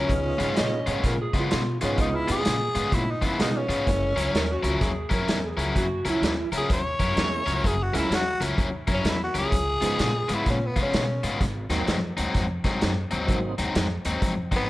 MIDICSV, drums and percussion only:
0, 0, Header, 1, 2, 480
1, 0, Start_track
1, 0, Tempo, 470958
1, 100, Time_signature, 4, 2, 24, 8
1, 14981, End_track
2, 0, Start_track
2, 0, Title_t, "Drums"
2, 97, Note_on_c, 9, 36, 93
2, 99, Note_on_c, 9, 42, 72
2, 199, Note_off_c, 9, 36, 0
2, 201, Note_off_c, 9, 42, 0
2, 404, Note_on_c, 9, 42, 57
2, 506, Note_off_c, 9, 42, 0
2, 577, Note_on_c, 9, 42, 79
2, 586, Note_on_c, 9, 38, 99
2, 679, Note_off_c, 9, 42, 0
2, 688, Note_off_c, 9, 38, 0
2, 883, Note_on_c, 9, 42, 61
2, 985, Note_off_c, 9, 42, 0
2, 1057, Note_on_c, 9, 42, 73
2, 1058, Note_on_c, 9, 36, 88
2, 1066, Note_on_c, 9, 38, 27
2, 1159, Note_off_c, 9, 36, 0
2, 1159, Note_off_c, 9, 42, 0
2, 1168, Note_off_c, 9, 38, 0
2, 1361, Note_on_c, 9, 36, 80
2, 1363, Note_on_c, 9, 42, 59
2, 1463, Note_off_c, 9, 36, 0
2, 1465, Note_off_c, 9, 42, 0
2, 1537, Note_on_c, 9, 42, 78
2, 1546, Note_on_c, 9, 38, 103
2, 1639, Note_off_c, 9, 42, 0
2, 1648, Note_off_c, 9, 38, 0
2, 1844, Note_on_c, 9, 42, 64
2, 1946, Note_off_c, 9, 42, 0
2, 2018, Note_on_c, 9, 42, 78
2, 2020, Note_on_c, 9, 36, 94
2, 2120, Note_off_c, 9, 42, 0
2, 2121, Note_off_c, 9, 36, 0
2, 2327, Note_on_c, 9, 42, 57
2, 2429, Note_off_c, 9, 42, 0
2, 2497, Note_on_c, 9, 42, 89
2, 2506, Note_on_c, 9, 38, 100
2, 2599, Note_off_c, 9, 42, 0
2, 2608, Note_off_c, 9, 38, 0
2, 2804, Note_on_c, 9, 42, 65
2, 2906, Note_off_c, 9, 42, 0
2, 2978, Note_on_c, 9, 42, 72
2, 2979, Note_on_c, 9, 36, 90
2, 3080, Note_off_c, 9, 42, 0
2, 3081, Note_off_c, 9, 36, 0
2, 3283, Note_on_c, 9, 42, 53
2, 3284, Note_on_c, 9, 36, 66
2, 3385, Note_off_c, 9, 42, 0
2, 3386, Note_off_c, 9, 36, 0
2, 3462, Note_on_c, 9, 42, 75
2, 3471, Note_on_c, 9, 38, 100
2, 3564, Note_off_c, 9, 42, 0
2, 3573, Note_off_c, 9, 38, 0
2, 3772, Note_on_c, 9, 42, 52
2, 3874, Note_off_c, 9, 42, 0
2, 3945, Note_on_c, 9, 36, 101
2, 3947, Note_on_c, 9, 42, 73
2, 3956, Note_on_c, 9, 38, 31
2, 4047, Note_off_c, 9, 36, 0
2, 4049, Note_off_c, 9, 42, 0
2, 4058, Note_off_c, 9, 38, 0
2, 4254, Note_on_c, 9, 42, 57
2, 4356, Note_off_c, 9, 42, 0
2, 4431, Note_on_c, 9, 42, 74
2, 4440, Note_on_c, 9, 38, 112
2, 4533, Note_off_c, 9, 42, 0
2, 4542, Note_off_c, 9, 38, 0
2, 4730, Note_on_c, 9, 42, 63
2, 4832, Note_off_c, 9, 42, 0
2, 4903, Note_on_c, 9, 42, 71
2, 4905, Note_on_c, 9, 36, 96
2, 4912, Note_on_c, 9, 38, 28
2, 5005, Note_off_c, 9, 42, 0
2, 5007, Note_off_c, 9, 36, 0
2, 5014, Note_off_c, 9, 38, 0
2, 5205, Note_on_c, 9, 42, 60
2, 5209, Note_on_c, 9, 36, 74
2, 5307, Note_off_c, 9, 42, 0
2, 5311, Note_off_c, 9, 36, 0
2, 5384, Note_on_c, 9, 42, 74
2, 5394, Note_on_c, 9, 38, 102
2, 5486, Note_off_c, 9, 42, 0
2, 5496, Note_off_c, 9, 38, 0
2, 5695, Note_on_c, 9, 42, 59
2, 5797, Note_off_c, 9, 42, 0
2, 5869, Note_on_c, 9, 36, 89
2, 5869, Note_on_c, 9, 42, 75
2, 5971, Note_off_c, 9, 36, 0
2, 5971, Note_off_c, 9, 42, 0
2, 6171, Note_on_c, 9, 42, 62
2, 6273, Note_off_c, 9, 42, 0
2, 6350, Note_on_c, 9, 42, 80
2, 6359, Note_on_c, 9, 38, 104
2, 6452, Note_off_c, 9, 42, 0
2, 6461, Note_off_c, 9, 38, 0
2, 6652, Note_on_c, 9, 42, 61
2, 6754, Note_off_c, 9, 42, 0
2, 6827, Note_on_c, 9, 42, 69
2, 6828, Note_on_c, 9, 36, 92
2, 6929, Note_off_c, 9, 42, 0
2, 6930, Note_off_c, 9, 36, 0
2, 7131, Note_on_c, 9, 36, 68
2, 7131, Note_on_c, 9, 42, 61
2, 7233, Note_off_c, 9, 36, 0
2, 7233, Note_off_c, 9, 42, 0
2, 7307, Note_on_c, 9, 42, 81
2, 7316, Note_on_c, 9, 38, 96
2, 7409, Note_off_c, 9, 42, 0
2, 7418, Note_off_c, 9, 38, 0
2, 7617, Note_on_c, 9, 42, 55
2, 7719, Note_off_c, 9, 42, 0
2, 7789, Note_on_c, 9, 36, 97
2, 7795, Note_on_c, 9, 42, 69
2, 7891, Note_off_c, 9, 36, 0
2, 7897, Note_off_c, 9, 42, 0
2, 8099, Note_on_c, 9, 42, 52
2, 8200, Note_off_c, 9, 42, 0
2, 8273, Note_on_c, 9, 42, 79
2, 8283, Note_on_c, 9, 38, 106
2, 8375, Note_off_c, 9, 42, 0
2, 8384, Note_off_c, 9, 38, 0
2, 8576, Note_on_c, 9, 42, 64
2, 8678, Note_off_c, 9, 42, 0
2, 8745, Note_on_c, 9, 36, 97
2, 8747, Note_on_c, 9, 42, 67
2, 8847, Note_off_c, 9, 36, 0
2, 8849, Note_off_c, 9, 42, 0
2, 9045, Note_on_c, 9, 42, 52
2, 9047, Note_on_c, 9, 36, 72
2, 9147, Note_off_c, 9, 42, 0
2, 9149, Note_off_c, 9, 36, 0
2, 9221, Note_on_c, 9, 42, 78
2, 9230, Note_on_c, 9, 38, 100
2, 9323, Note_off_c, 9, 42, 0
2, 9332, Note_off_c, 9, 38, 0
2, 9527, Note_on_c, 9, 42, 54
2, 9629, Note_off_c, 9, 42, 0
2, 9705, Note_on_c, 9, 36, 101
2, 9705, Note_on_c, 9, 42, 83
2, 9806, Note_off_c, 9, 36, 0
2, 9807, Note_off_c, 9, 42, 0
2, 10007, Note_on_c, 9, 42, 64
2, 10109, Note_off_c, 9, 42, 0
2, 10183, Note_on_c, 9, 42, 80
2, 10192, Note_on_c, 9, 38, 99
2, 10285, Note_off_c, 9, 42, 0
2, 10294, Note_off_c, 9, 38, 0
2, 10486, Note_on_c, 9, 42, 59
2, 10588, Note_off_c, 9, 42, 0
2, 10662, Note_on_c, 9, 42, 71
2, 10665, Note_on_c, 9, 36, 90
2, 10671, Note_on_c, 9, 38, 28
2, 10764, Note_off_c, 9, 42, 0
2, 10767, Note_off_c, 9, 36, 0
2, 10773, Note_off_c, 9, 38, 0
2, 10968, Note_on_c, 9, 42, 64
2, 10970, Note_on_c, 9, 36, 75
2, 11070, Note_off_c, 9, 42, 0
2, 11071, Note_off_c, 9, 36, 0
2, 11145, Note_on_c, 9, 42, 83
2, 11155, Note_on_c, 9, 38, 103
2, 11247, Note_off_c, 9, 42, 0
2, 11257, Note_off_c, 9, 38, 0
2, 11450, Note_on_c, 9, 42, 59
2, 11552, Note_off_c, 9, 42, 0
2, 11626, Note_on_c, 9, 42, 70
2, 11627, Note_on_c, 9, 36, 97
2, 11635, Note_on_c, 9, 38, 32
2, 11728, Note_off_c, 9, 42, 0
2, 11729, Note_off_c, 9, 36, 0
2, 11737, Note_off_c, 9, 38, 0
2, 11926, Note_on_c, 9, 42, 50
2, 11935, Note_on_c, 9, 38, 30
2, 12027, Note_off_c, 9, 42, 0
2, 12037, Note_off_c, 9, 38, 0
2, 12102, Note_on_c, 9, 42, 71
2, 12112, Note_on_c, 9, 38, 98
2, 12204, Note_off_c, 9, 42, 0
2, 12214, Note_off_c, 9, 38, 0
2, 12408, Note_on_c, 9, 42, 60
2, 12510, Note_off_c, 9, 42, 0
2, 12582, Note_on_c, 9, 42, 64
2, 12586, Note_on_c, 9, 36, 92
2, 12592, Note_on_c, 9, 38, 31
2, 12684, Note_off_c, 9, 42, 0
2, 12688, Note_off_c, 9, 36, 0
2, 12694, Note_off_c, 9, 38, 0
2, 12884, Note_on_c, 9, 42, 55
2, 12887, Note_on_c, 9, 36, 69
2, 12893, Note_on_c, 9, 38, 31
2, 12986, Note_off_c, 9, 42, 0
2, 12988, Note_off_c, 9, 36, 0
2, 12995, Note_off_c, 9, 38, 0
2, 13060, Note_on_c, 9, 42, 79
2, 13069, Note_on_c, 9, 38, 100
2, 13162, Note_off_c, 9, 42, 0
2, 13171, Note_off_c, 9, 38, 0
2, 13359, Note_on_c, 9, 42, 52
2, 13461, Note_off_c, 9, 42, 0
2, 13539, Note_on_c, 9, 42, 74
2, 13541, Note_on_c, 9, 36, 96
2, 13641, Note_off_c, 9, 42, 0
2, 13642, Note_off_c, 9, 36, 0
2, 13842, Note_on_c, 9, 42, 55
2, 13944, Note_off_c, 9, 42, 0
2, 14017, Note_on_c, 9, 42, 84
2, 14026, Note_on_c, 9, 38, 104
2, 14119, Note_off_c, 9, 42, 0
2, 14128, Note_off_c, 9, 38, 0
2, 14317, Note_on_c, 9, 42, 67
2, 14419, Note_off_c, 9, 42, 0
2, 14493, Note_on_c, 9, 42, 79
2, 14495, Note_on_c, 9, 36, 94
2, 14595, Note_off_c, 9, 42, 0
2, 14597, Note_off_c, 9, 36, 0
2, 14796, Note_on_c, 9, 42, 63
2, 14797, Note_on_c, 9, 36, 79
2, 14898, Note_off_c, 9, 42, 0
2, 14899, Note_off_c, 9, 36, 0
2, 14981, End_track
0, 0, End_of_file